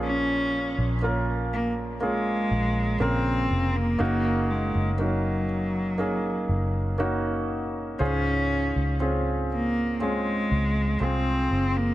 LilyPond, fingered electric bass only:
\new Staff \with { instrumentName = "Fingered electric bass" } { \clef bass \time 4/4 \key des \major \tempo 4 = 60 bes,,8. bes,,4.~ bes,,16 bes,,8 bes,,8 f,,8 | ges,,8. ges,,4.~ ges,,16 ges,,4. | des,8. des,4.~ des,16 des,8 c,8 ges,,8 | }